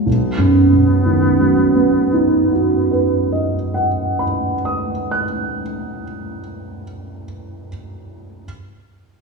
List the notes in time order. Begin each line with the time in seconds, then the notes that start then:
0.04 B1 B3
0.38 F#2
0.72 B2
1.06 D#3
1.41 F#3
1.76 B3
2.13 D#4
2.53 F#4
2.91 B4
3.32 D#5
3.74 F#5
4.19 B5
4.65 D#6
5.11 F#6